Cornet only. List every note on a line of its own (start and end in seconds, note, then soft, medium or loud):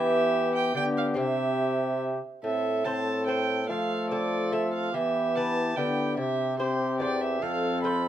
0.00 0.72 G4 medium
0.75 1.17 G4 medium
1.17 2.21 G4 medium
2.44 2.83 A4 medium
2.86 3.68 A4 medium
3.69 4.92 A4 medium
4.93 5.75 G4 medium
5.77 6.17 G4 medium
6.18 6.58 G4 medium
6.59 7.44 G4 medium
7.42 8.08 A4 medium